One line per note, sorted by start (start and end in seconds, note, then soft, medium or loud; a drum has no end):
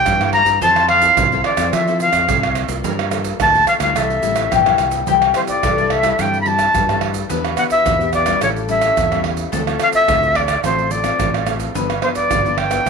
0.00 0.14 G3 medium
0.00 0.14 A#3 medium
0.00 0.15 E4 medium
0.00 0.61 D5 loud
0.00 0.29 G5 loud
0.05 0.41 G2 loud
0.05 0.59 G2 medium
0.05 pandeiro medium
0.05 tamborim medium
0.05 shaker medium
0.05 surdo loud
0.21 0.58 G3 medium
0.21 0.58 A#3 medium
0.21 0.58 E4 medium
0.21 pandeiro soft
0.21 tamborim medium
0.21 shaker soft
0.32 0.59 A#5 loud
0.32 pandeiro medium
0.32 tamborim medium
0.46 0.58 G2 medium
0.46 pandeiro medium
0.46 shaker medium
0.46 surdo soft
0.61 1.09 F2 medium
0.61 1.15 F3 medium
0.61 0.88 C4 medium
0.61 0.88 E4 medium
0.61 0.88 A4 medium
0.61 2.91 C5 loud
0.61 0.88 A5 medium
0.61 pandeiro medium
0.61 shaker medium
0.61 surdo medium
0.76 pandeiro soft
0.76 tamborim medium
0.76 shaker soft
0.88 1.41 F5 loud
0.88 pandeiro medium
0.88 tamborim medium
1.02 1.26 C4 medium
1.02 1.26 E4 medium
1.02 1.26 A4 medium
1.02 pandeiro medium
1.02 shaker medium
1.02 surdo soft
1.17 1.41 C2 medium
1.17 1.71 C3 medium
1.17 pandeiro medium
1.17 tamborim medium
1.17 shaker medium
1.17 surdo loud
1.32 1.55 C4 medium
1.32 1.55 E4 medium
1.32 1.56 A4 medium
1.32 pandeiro soft
1.32 shaker soft
1.44 1.75 D5 medium
1.44 pandeiro medium
1.44 tamborim medium
1.57 1.70 F2 loud
1.57 1.82 C4 medium
1.57 1.82 E4 medium
1.57 1.82 A4 medium
1.57 pandeiro medium
1.57 tamborim medium
1.57 shaker medium
1.57 surdo soft
1.73 2.08 F3 loud
1.73 2.26 F3 medium
1.73 2.00 E5 medium
1.73 pandeiro medium
1.73 tamborim medium
1.73 shaker medium
1.73 surdo medium
1.87 2.25 C4 medium
1.87 2.25 E4 medium
1.87 2.25 A4 medium
1.87 pandeiro soft
1.87 shaker soft
2.00 2.53 F5 medium
2.00 pandeiro medium
2.00 shaker medium
2.13 2.25 F2 medium
2.13 pandeiro medium
2.13 tamborim medium
2.13 shaker medium
2.13 surdo soft
2.29 2.64 C2 loud
2.29 2.82 C3 medium
2.29 2.66 C4 medium
2.29 2.67 E4 medium
2.29 2.67 A4 medium
2.29 pandeiro medium
2.29 tamborim medium
2.29 shaker medium
2.29 surdo loud
2.43 pandeiro soft
2.43 tamborim medium
2.43 shaker soft
2.55 pandeiro medium
2.55 tamborim medium
2.55 shaker medium
2.68 2.81 C2 medium
2.68 3.10 A#3 medium
2.68 3.10 F4 medium
2.68 pandeiro medium
2.68 shaker medium
2.68 surdo soft
2.84 3.32 G2 medium
2.84 3.38 G3 medium
2.84 3.96 A#4 medium
2.84 pandeiro medium
2.84 shaker medium
2.84 surdo medium
2.99 pandeiro soft
2.99 tamborim medium
2.99 shaker soft
3.11 3.38 A#3 medium
3.11 3.38 F4 medium
3.11 3.38 A4 medium
3.11 pandeiro medium
3.11 tamborim medium
3.11 shaker medium
3.24 pandeiro medium
3.24 shaker medium
3.24 surdo soft
3.40 3.64 D2 medium
3.40 3.93 D3 medium
3.40 3.67 A5 loud
3.40 pandeiro medium
3.40 tamborim medium
3.40 shaker medium
3.40 surdo loud
3.55 3.78 A#3 medium
3.55 3.78 F4 medium
3.55 3.78 A4 medium
3.55 pandeiro soft
3.55 shaker soft
3.67 3.73 F5 medium
3.67 pandeiro medium
3.67 tamborim medium
3.67 shaker medium
3.80 3.93 D2 medium
3.80 4.18 G3 medium
3.80 4.19 A#3 medium
3.80 4.19 E4 medium
3.80 3.98 F5 medium
3.80 pandeiro medium
3.80 tamborim medium
3.80 shaker medium
3.80 surdo soft
3.95 4.20 C2 loud
3.95 4.49 C3 medium
3.95 4.51 A4 medium
3.95 4.80 E5 medium
3.95 pandeiro medium
3.95 tamborim medium
3.95 shaker medium
3.95 surdo medium
4.10 pandeiro soft
4.10 shaker soft
4.22 4.49 A1 medium
4.22 4.61 G3 medium
4.22 4.61 A#3 medium
4.22 4.61 E4 medium
4.22 pandeiro medium
4.22 shaker medium
4.36 pandeiro medium
4.36 tamborim medium
4.36 shaker medium
4.36 surdo soft
4.51 4.77 A#1 medium
4.51 5.05 G2 medium
4.51 5.04 G4 medium
4.51 pandeiro medium
4.51 tamborim medium
4.51 shaker medium
4.51 surdo loud
4.66 5.03 G3 medium
4.66 5.04 A#3 medium
4.66 5.04 E4 medium
4.66 pandeiro soft
4.66 tamborim medium
4.66 shaker soft
4.78 5.04 C2 medium
4.78 pandeiro medium
4.78 tamborim medium
4.78 shaker medium
4.91 pandeiro medium
4.91 shaker medium
4.91 surdo soft
5.07 5.31 C2 medium
5.07 5.61 C3 medium
5.07 5.31 G3 medium
5.07 5.31 A3 medium
5.07 5.31 E4 medium
5.07 5.63 G4 medium
5.07 pandeiro medium
5.07 shaker medium
5.07 surdo medium
5.22 pandeiro soft
5.22 tamborim medium
5.22 shaker soft
5.34 5.72 G3 soft
5.34 5.73 A3 soft
5.34 5.73 E4 medium
5.34 5.41 C5 medium
5.34 pandeiro medium
5.34 tamborim medium
5.34 shaker medium
5.47 5.93 D5 medium
5.47 pandeiro medium
5.47 shaker medium
5.47 surdo soft
5.63 6.11 C2 medium
5.63 6.16 G2 medium
5.63 7.36 A4 medium
5.63 pandeiro medium
5.63 tamborim medium
5.63 shaker medium
5.63 surdo loud
5.78 6.01 G3 medium
5.78 6.01 A3 medium
5.78 6.01 E4 medium
5.78 pandeiro soft
5.78 shaker soft
5.90 6.22 E5 medium
5.90 pandeiro medium
5.90 tamborim medium
5.90 surdo soft
6.03 6.14 G3 medium
6.03 6.14 A3 medium
6.03 6.14 E4 medium
6.03 pandeiro medium
6.03 tamborim medium
6.03 shaker medium
6.03 surdo soft
6.19 6.66 G2 loud
6.19 6.72 C3 medium
6.19 6.42 G3 medium
6.19 6.43 A3 medium
6.19 6.43 E4 medium
6.19 6.40 G5 medium
6.19 pandeiro medium
6.19 tamborim medium
6.19 shaker medium
6.19 surdo medium
6.34 pandeiro soft
6.34 shaker soft
6.40 6.48 B5 medium
6.46 6.84 G3 medium
6.46 6.84 A3 medium
6.46 6.84 E4 medium
6.46 7.02 A5 loud
6.46 pandeiro medium
6.59 pandeiro medium
6.59 tamborim medium
6.59 shaker medium
6.59 surdo soft
6.75 7.28 G2 medium
6.75 7.22 G2 medium
6.75 pandeiro medium
6.75 tamborim medium
6.75 shaker medium
6.75 surdo loud
6.89 7.26 G3 medium
6.89 7.26 A3 medium
6.89 7.27 E4 medium
6.89 pandeiro soft
6.89 tamborim medium
6.89 shaker soft
7.01 pandeiro medium
7.01 tamborim medium
7.14 pandeiro medium
7.14 shaker medium
7.14 surdo soft
7.29 7.54 E2 medium
7.29 7.83 E3 medium
7.29 7.54 B3 medium
7.29 7.54 D4 medium
7.29 7.54 G4 medium
7.29 8.45 B4 loud
7.29 pandeiro medium
7.29 shaker medium
7.29 surdo medium
7.45 pandeiro soft
7.45 tamborim medium
7.45 shaker soft
7.57 7.95 B3 medium
7.57 7.95 D4 medium
7.57 7.96 G4 medium
7.57 7.63 F#5 medium
7.57 pandeiro medium
7.57 tamborim medium
7.57 shaker medium
7.70 8.10 E5 loud
7.70 pandeiro medium
7.70 shaker medium
7.70 surdo soft
7.86 8.33 E2 medium
7.86 8.39 B2 medium
7.86 pandeiro medium
7.86 tamborim medium
7.86 shaker medium
7.86 surdo loud
8.00 8.24 B3 medium
8.00 8.24 D4 medium
8.00 8.24 G4 medium
8.00 pandeiro soft
8.00 shaker soft
8.13 8.40 D5 medium
8.13 pandeiro medium
8.13 tamborim medium
8.13 shaker medium
8.13 surdo soft
8.26 8.64 G3 medium
8.26 8.65 C#4 medium
8.26 8.65 E4 medium
8.26 pandeiro medium
8.26 tamborim medium
8.26 shaker medium
8.26 surdo soft
8.41 8.89 A1 medium
8.41 8.95 A2 medium
8.41 9.51 A4 medium
8.41 8.48 C#5 medium
8.41 pandeiro medium
8.41 tamborim medium
8.41 shaker medium
8.41 surdo medium
8.56 pandeiro soft
8.56 shaker soft
8.68 8.95 G3 medium
8.68 8.95 C#4 medium
8.68 8.96 E4 medium
8.68 9.21 E5 medium
8.68 pandeiro medium
8.68 shaker medium
8.81 pandeiro medium
8.81 tamborim medium
8.81 shaker medium
8.81 surdo soft
8.97 9.45 E2 medium
8.97 9.50 E3 medium
8.97 pandeiro medium
8.97 tamborim medium
8.97 shaker medium
8.97 surdo loud
9.12 9.49 G3 medium
9.12 9.49 C#4 medium
9.12 9.49 E4 medium
9.12 pandeiro soft
9.12 tamborim medium
9.12 shaker soft
9.24 pandeiro medium
9.24 tamborim medium
9.37 pandeiro medium
9.37 shaker medium
9.37 surdo soft
9.52 9.76 D2 loud
9.52 10.06 D3 medium
9.52 9.61 A3 medium
9.52 9.62 C4 medium
9.52 9.62 F4 medium
9.52 11.81 A4 medium
9.52 pandeiro medium
9.52 shaker medium
9.52 surdo medium
9.67 10.04 A3 medium
9.67 10.05 C4 medium
9.67 10.05 F4 medium
9.67 pandeiro soft
9.67 tamborim medium
9.67 shaker soft
9.80 9.88 F5 loud
9.80 pandeiro medium
9.80 tamborim medium
9.80 shaker medium
9.93 10.37 E5 loud
9.93 pandeiro medium
9.93 shaker medium
9.93 surdo soft
10.08 10.56 D2 medium
10.08 10.61 A2 medium
10.08 10.44 A3 medium
10.08 10.44 C4 medium
10.08 10.44 F4 medium
10.08 pandeiro medium
10.08 tamborim medium
10.08 shaker medium
10.08 surdo loud
10.23 pandeiro soft
10.23 shaker soft
10.35 10.64 D5 medium
10.35 pandeiro medium
10.35 tamborim medium
10.35 surdo soft
10.48 pandeiro medium
10.48 tamborim medium
10.48 shaker medium
10.48 surdo soft
10.64 11.11 A1 medium
10.64 11.17 D3 medium
10.64 10.87 A3 medium
10.64 10.87 C4 medium
10.64 10.88 F4 medium
10.64 10.92 C5 medium
10.64 pandeiro medium
10.64 tamborim medium
10.64 shaker medium
10.64 surdo medium
10.78 pandeiro soft
10.78 shaker soft
10.91 11.01 A3 medium
10.91 11.01 C4 medium
10.91 11.01 F4 medium
10.91 11.47 D5 medium
10.91 pandeiro medium
10.91 shaker medium
11.03 11.42 A3 medium
11.03 11.42 C4 medium
11.03 11.42 F4 medium
11.03 pandeiro medium
11.03 tamborim medium
11.03 shaker medium
11.03 surdo soft
11.19 11.67 A1 medium
11.19 11.72 A2 medium
11.19 pandeiro medium
11.19 tamborim medium
11.19 shaker medium
11.19 surdo loud
11.34 pandeiro soft
11.34 tamborim medium
11.34 shaker soft
11.46 11.72 A3 medium
11.46 11.72 C4 medium
11.46 11.73 F4 medium
11.46 pandeiro medium
11.46 tamborim medium
11.46 shaker medium
11.60 pandeiro medium
11.60 shaker medium
11.60 surdo soft
11.74 11.99 G1 medium
11.74 12.27 G2 medium
11.74 11.91 F3 medium
11.74 11.91 B3 medium
11.74 11.91 D4 medium
11.74 12.90 B4 medium
11.74 pandeiro medium
11.74 shaker medium
11.74 surdo medium
11.90 pandeiro soft
11.90 tamborim medium
11.90 shaker soft
12.01 12.39 F3 medium
12.01 12.39 B3 medium
12.01 12.40 D4 medium
12.01 12.08 C5 medium
12.01 pandeiro medium
12.01 tamborim medium
12.15 12.59 D5 medium
12.15 pandeiro medium
12.15 shaker medium
12.15 surdo soft
12.30 12.78 G1 loud
12.30 12.83 D3 medium
12.30 pandeiro medium
12.30 tamborim medium
12.30 shaker medium
12.30 surdo loud
12.45 12.68 F3 medium
12.45 12.68 B3 medium
12.45 12.68 D4 medium
12.45 pandeiro soft
12.45 shaker soft
12.57 12.90 G5 medium
12.57 pandeiro medium
12.57 tamborim medium
12.70 12.80 F3 medium
12.70 12.81 B3 medium
12.70 12.81 D4 medium
12.70 pandeiro medium
12.70 tamborim medium
12.70 shaker medium
12.70 surdo soft
12.85 12.90 D2 medium
12.85 12.90 G2 medium
12.85 12.90 F3 medium
12.85 12.90 B3 medium
12.85 12.90 D4 medium
12.85 pandeiro medium
12.85 tamborim medium
12.85 shaker medium
12.85 surdo medium